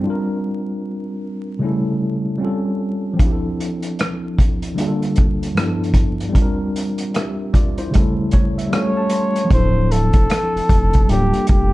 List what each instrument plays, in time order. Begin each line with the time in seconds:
Already playing: tine electric piano G3
0.01 tine electric piano C4 D4
0.07 tine electric piano F4 A#4
1.59 tine electric piano C#3 G3 A3 C#4
1.64 tine electric piano E4 A4
2.38 tine electric piano G3 C4 C#4
2.42 tine electric piano F4 A4
3.13 tine electric piano F3 C4
3.19 tine electric piano D4 E4, kick, closed hi-hat
3.26 tine electric piano G4
3.33 tine electric piano A4
3.60 closed hi-hat
3.82 closed hi-hat
3.99 cross-stick, closed hi-hat
4.38 kick, closed hi-hat
4.62 closed hi-hat
4.74 tine electric piano D3 G3 A#3 D4, closed hi-hat
4.80 tine electric piano F4 G#4
4.87 tine electric piano A4
5.02 closed hi-hat
5.16 kick, closed hi-hat
5.43 closed hi-hat
5.54 tine electric piano G2 F3 B3 D4, cross-stick, closed hi-hat
5.58 tine electric piano E4 G4
5.66 tine electric piano A4
5.84 closed hi-hat
5.94 kick, closed hi-hat
6.20 closed hi-hat
6.29 tine electric piano G3 C4
6.35 tine electric piano D4 F4, kick, closed hi-hat
6.42 tine electric piano A#4
6.76 closed hi-hat
6.98 closed hi-hat
7.14 tine electric piano G4 E5, cross-stick, closed hi-hat
7.53 tine electric piano F4 D5, kick, closed hi-hat
7.78 tine electric piano E4 C5, closed hi-hat
7.91 tine electric piano C#3 G3 A3 C#4, closed hi-hat
7.95 tine electric piano E4 A4, kick
8.31 tine electric piano C#5, kick, closed hi-hat
8.58 tine electric piano E5, closed hi-hat
8.69 tine electric piano G3 A3 C#4 F5, cross-stick, closed hi-hat
8.74 tine electric piano F4 A4, flugelhorn C#5
8.97 tine electric piano A5
9.10 tine electric piano C6, closed hi-hat
9.36 closed hi-hat
9.44 tine electric piano F3 C4
9.50 sub bass D1, tine electric piano D4 E4, flugelhorn C5, kick, closed hi-hat
9.57 tine electric piano A4
9.91 flugelhorn A4, closed hi-hat
10.13 sub bass F1, kick, closed hi-hat
10.30 cross-stick, closed hi-hat
10.55 sub bass F1, closed hi-hat
10.69 sub bass F1, kick, closed hi-hat
10.93 kick, closed hi-hat
11.06 sub bass D1, tine electric piano G3 A3 D4, closed hi-hat
11.10 tine electric piano A#3 F4 A4, flugelhorn G4
11.33 sub bass F1, closed hi-hat
11.47 sub bass F1, flugelhorn G4, kick, closed hi-hat